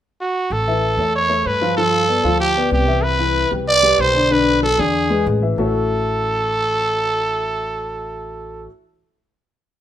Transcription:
0.21 F#4
0.50 A1 A4
0.67 E3 E4 E5
0.97 E2 A3 A4 C#5
1.15 C#5
1.29 A3 A4 C#5
1.46 G2 B4
1.61 F3 F4 F5
1.77 F3 F4 A4 F5
2.08 B3 B4 D5
2.24 D2 F3 F4 F5
2.40 G4
2.56 B3 B4 D5
2.71 C2 G4
2.88 E3 E4 E5
3.03 B4
3.19 E3 E4 E5
3.51 C2 G3 G4 B4
3.68 D5
3.83 G3 G4 B4
3.98 B1 C5
4.14 D3 D4 D5
4.30 D3 D4 B4
4.62 F#3 F#4 A4
4.78 E2 D3 D4 G#4 D5
5.10 G#3 G#4 B4
5.27 A1
5.42 E3 E4 E5
5.58 A1 A3 E4 F#4 A4 C#5 E5

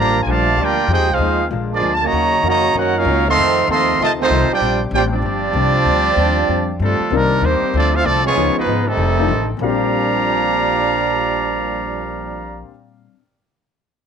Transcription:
Already playing: A1 G2 D3 F3 G3 A#3 D4 F4
0.00 G4 D5 F5 A#5
0.23 A#1 G#5
0.27 G2 D3 F3 A3 A#3 D4 G4 D5 F5 A5
0.57 D2 G2 F3 A#3 D4 G4
0.62 F4 A#4 D5 G5
0.88 F2 D#3 G#3 C4 G4
0.92 D#4 G#4 C5 G5
0.98 D#2
1.08 C2 G#3 C4 F4 G#4 F5
1.12 D#4 C5
1.18 D#2 F2 D#3 G#3 C4
1.50 A#1 A#2 D3 F3 G#3 A#3 D4 F4
1.71 F3 G#3 A#3 D4 F4 G#4 D5
1.81 D2 A#2 F3 G#3 D4
1.94 A5
2.02 C#3 F#3 A#3 F#4 C#5 D#5 A#5
2.12 D#2 C#3 D#3 A#3 C#4 D#4 F#4
2.43 F2 C#3 D#3 A#3 C#4 F#4
2.47 F#4 C#5 D#5 A#5
2.74 F#2 D#3 A#3 C#4 F#4 A#4
2.78 D#4 C#5 F#5
2.96 A#3 C#4 D#4 F4 A#4 C#5 F5
3.05 C#2 D#3 A#3 C#4 F#4
3.27 D#3 A3 C4 A4 D#5 F5 C6
3.36 F2 C3 F3 A3 C4 D#4
3.40 A4
3.67 D#2 D#3 F3 A3 C4 D#4 A4
3.72 D#5 F5 C6
3.99 D2 C3 D#3 F3 A3 C4 D#4 F4 A4 D#5 A5
4.03 C5
4.20 D#3 A3 C4 D#4 F4 C5
4.30 C2 F3 C4 D#4 A4
4.50 G3 D4 F4 G4 C5 D5 G5, muted upright bass stroke
4.60 A#1 A#2 G3 C4 D4
4.64 D4
4.91 A1 A#2 G3 C4 D4 F4 G4 C5 D5 G5
5.13 F3 G3 C4 D4 F4 G4 D5
5.22 G1 A#2 G3 C4
5.26 D4
5.53 C2 A#2 G3 C4 D4
5.85 D2 A#2 G3 C4 D4
6.16 D#2 A#2 G3 C4 D4
6.48 F2 A#2 G3 C4 D4
6.79 G2 A#2 D3 F3 G3 A3 C4 D4 F4 A4
6.83 D4
7.00 muted upright bass stroke
7.11 C2 C3 D#3 G3 A#3 C4 D4 D#4 A#4 D5
7.41 D#2 C3 D#3 G3 A#3 C4 D4 D#4 G4 C5
7.61 muted upright bass stroke
7.74 D2 D3 F3 A3 C4 D4 F4 A4 D5
7.93 A3 C4 D4 F4 A4 C5 F5
8.04 C2 D3 F3 A3 C4 D4 F4 A4 D5
8.24 F3 G#3 B3 C#4 F4 G#4 C#5
8.36 C#2 C#3 F3 B3 C#4 D#4 G#4
8.55 F3 G#3 B3 D#4 F4 B4, muted upright bass stroke
8.66 G#1 C#3 F3 B3 D#4
8.86 C3 D#3 G3 A3 C4 D#4 A4
8.97 F1 F2 D#3 A3 D4
9.19 F3 A3 D4 D#4 A4
9.28 A1 F2 D#3 A3 D4
9.57 A#1 A#2 F3 G3 D4 G4 D5 A#5
9.61 A#2 G3 A#3 C4 D4 G4 F5
9.69 C4
9.74 D4

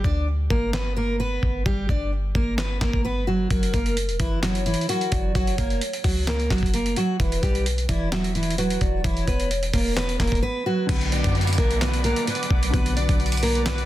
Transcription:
0.04 D2 D4 D5, kick
0.50 G1 A#3 A#4, kick
0.73 B3 B4, snare, clap
0.96 A#3 A#4
1.20 B3 B4
1.43 G1, kick
1.66 G1 G3 G4, kick
1.89 G1 D4 D5, kick
2.35 G1 A#3 A#4, kick
2.58 B3 B4, snare, clap
2.81 G1 A#3 A#4, kick, snare, clap
2.93 kick
3.05 B3 B4
3.27 F#3 F#4
3.50 F#1 F#3 F#4 A#4, kick, closed hi-hat
3.63 closed hi-hat
3.73 F#1 A#3 A#4, kick, closed hi-hat
3.86 closed hi-hat
3.97 closed hi-hat
4.09 E1, closed hi-hat
4.20 F#1 E3 E4 B4, kick, closed hi-hat
4.42 F#3 F#4 C#5, snare, clap, closed hi-hat
4.55 closed hi-hat
4.66 E3 E4, closed hi-hat
4.74 closed hi-hat
4.81 closed hi-hat
4.89 F#3 F#4 A#4, closed hi-hat
5.01 closed hi-hat
5.12 F#1 D5, kick, closed hi-hat
5.35 F#1 F#3 F#4 C#5, kick, closed hi-hat
5.47 closed hi-hat
5.58 F#1 A#3 A#4, kick, closed hi-hat
5.70 closed hi-hat
5.81 closed hi-hat
5.93 closed hi-hat
6.04 C#2 F#3 F#4, kick, open hi-hat
6.27 A#3 A#4, snare, clap, closed hi-hat
6.40 closed hi-hat
6.50 F#1 F#3 F#4, kick, snare, clap, closed hi-hat
6.58 closed hi-hat
6.63 kick, closed hi-hat
6.74 A#3 A#4, closed hi-hat
6.86 closed hi-hat
6.96 F#3 F#4, closed hi-hat
7.20 E1 E3 E4 B4, kick, closed hi-hat
7.32 closed hi-hat
7.43 B1 G3 G4, kick, closed hi-hat
7.55 closed hi-hat
7.66 closed hi-hat
7.78 closed hi-hat
7.89 E1 E3 E4 D5, kick, closed hi-hat
8.12 F#3 F#4, snare, clap, closed hi-hat
8.24 closed hi-hat
8.35 E3 E4, closed hi-hat
8.43 closed hi-hat
8.50 closed hi-hat
8.58 F#3 F#4 B4, closed hi-hat
8.70 closed hi-hat
8.81 E1 D5, kick, closed hi-hat
9.04 E1 E3 E4, kick, closed hi-hat
9.17 closed hi-hat
9.28 E1 B3 B4, kick, closed hi-hat
9.40 closed hi-hat
9.51 closed hi-hat
9.63 closed hi-hat
9.73 E1 A#3 A#4, kick, open hi-hat
9.97 B3 B4, snare, clap, closed hi-hat
10.09 closed hi-hat
10.20 E1 A#3 A#4, kick, snare, clap, closed hi-hat
10.27 closed hi-hat
10.32 kick, closed hi-hat
10.43 B3 B4
10.66 F#3 F#4 B4
10.86 B1 D3 F#3 B3 B4 D5 F#5 D6, kick, closed hi-hat, crash, downlifter
10.92 F#4
11.01 closed hi-hat
11.12 D4 D5, closed hi-hat
11.24 F#2, kick, closed hi-hat
11.35 closed hi-hat
11.41 closed hi-hat
11.47 closed hi-hat
11.53 closed hi-hat
11.58 B1 A#3 A#4, kick, closed hi-hat
11.71 closed hi-hat
11.81 B3 B4, snare, clap, closed hi-hat
11.94 closed hi-hat
12.04 A#3 A#4, closed hi-hat
12.16 closed hi-hat
12.27 B3 B4, closed hi-hat
12.35 closed hi-hat
12.43 closed hi-hat
12.51 B1, kick
12.63 closed hi-hat
12.70 B1 D3 F#3 B3 B4, kick, closed hi-hat
12.75 B3 F#4
12.86 closed hi-hat
12.97 D4 D5, closed hi-hat
13.09 B1, kick, closed hi-hat
13.20 closed hi-hat
13.26 closed hi-hat
13.32 closed hi-hat
13.37 closed hi-hat
13.43 A#3 A#4, open hi-hat
13.55 closed hi-hat
13.66 B3 B4, snare, clap, closed hi-hat
13.78 closed hi-hat

